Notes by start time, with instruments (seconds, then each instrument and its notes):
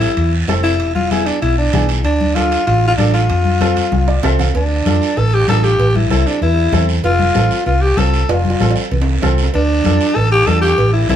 0.00 alto saxophone E4, high timbale, short guiro
0.17 fingered electric bass E2, high timbale, long guiro
0.48 fingered electric bass F1, upright piano C4 E4 A4, high conga, high timbale, low timbale, short guiro
0.64 alto saxophone E4, high timbale, short guiro
0.80 fingered electric bass E1, high timbale, long guiro
0.95 alto saxophone F4, high conga
1.11 upright piano B3 E4 G#4, alto saxophone E4, high conga, high timbale, short guiro
1.26 alto saxophone D4, high timbale, short guiro
1.42 fingered electric bass B1, alto saxophone E4, high timbale, long guiro
1.58 alto saxophone D4
1.73 fingered electric bass B1, upright piano B3 E4 G#4, high conga, low conga, high timbale, short guiro
1.89 high timbale, short guiro
2.05 fingered electric bass D2, alto saxophone D4, high timbale, long guiro
2.21 high conga
2.35 upright piano D4 F4 A4, alto saxophone F4, high conga, high timbale, short guiro
2.52 high timbale, short guiro
2.67 fingered electric bass A1, alto saxophone F4, high timbale, long guiro
2.88 alto saxophone F4
2.97 fingered electric bass A1, alto saxophone D4, upright piano D4 F4 A4, high conga, high timbale, short guiro
3.14 alto saxophone F4, high timbale, short guiro
3.30 fingered electric bass F2, high timbale, long guiro
3.45 high conga
3.61 upright piano C4 F4 A4, high conga, high timbale, short guiro
3.76 high conga, high timbale, short guiro
3.92 fingered electric bass C2, high conga, high timbale, long guiro
4.08 upright piano D5, high timbale
4.23 fingered electric bass C2, upright piano C4 F4 A4 E5, low conga, low timbale, short guiro
4.39 upright piano F5, low conga, low timbale, short guiro
4.54 fingered electric bass D2, alto saxophone D4, cowbell, long guiro
4.86 fingered electric bass F2, upright piano D4 F4 A4, cowbell, high conga, short guiro
5.02 short guiro
5.17 fingered electric bass A1, alto saxophone A4, cowbell, long guiro
5.34 alto saxophone G4
5.48 fingered electric bass A1, upright piano D4 F4 A4, alto saxophone A4, cowbell, high conga, low timbale, short guiro
5.64 alto saxophone G4, short guiro
5.79 fingered electric bass A1, cowbell, long guiro
5.95 alto saxophone E4, high conga
6.10 fingered electric bass C2, upright piano C4 E4 A4, alto saxophone E4, cowbell, high conga, short guiro
6.27 alto saxophone D4, short guiro
6.41 fingered electric bass E2, alto saxophone E4, cowbell, long guiro
6.72 fingered electric bass E2, upright piano C4 E4 A4, cowbell, high conga, low conga, low timbale, short guiro
6.89 short guiro
7.03 fingered electric bass F1, alto saxophone F4, cowbell, long guiro
7.19 high conga
7.34 fingered electric bass A1, upright piano C4 F4 A4, cowbell, high conga, short guiro
7.51 short guiro
7.66 fingered electric bass C2, alto saxophone F4, cowbell, long guiro
7.82 alto saxophone G4
7.97 fingered electric bass C2, upright piano C4 F4 A4, alto saxophone A4, cowbell, high conga, short guiro
8.13 short guiro
8.29 fingered electric bass F1, alto saxophone F4, cowbell, high timbale, long guiro
8.45 high conga
8.50 high timbale
8.60 fingered electric bass A1, upright piano C4 F4 A4, cowbell, high conga, high timbale, short guiro
8.71 high timbale
8.76 short guiro
8.91 fingered electric bass C2, cowbell, low conga, long guiro
9.02 low timbale
9.12 low timbale
9.22 fingered electric bass C2, upright piano C4 F4 A4, cowbell, high conga, low conga, short guiro
9.38 short guiro
9.43 low timbale
9.54 fingered electric bass D2, alto saxophone D4, cowbell, long guiro
9.84 fingered electric bass F2, upright piano D4 F4 A4, cowbell, high conga, short guiro
10.01 short guiro
10.16 fingered electric bass A1, alto saxophone A4, cowbell, long guiro
10.32 alto saxophone G4
10.47 fingered electric bass E2, upright piano D4 F4 A4, alto saxophone A4, cowbell, high conga, short guiro
10.62 alto saxophone G4, short guiro
10.78 fingered electric bass A1, cowbell, long guiro
10.93 alto saxophone E4
11.09 fingered electric bass C2, upright piano C4 E4 A4, alto saxophone E4, cowbell, high conga, short guiro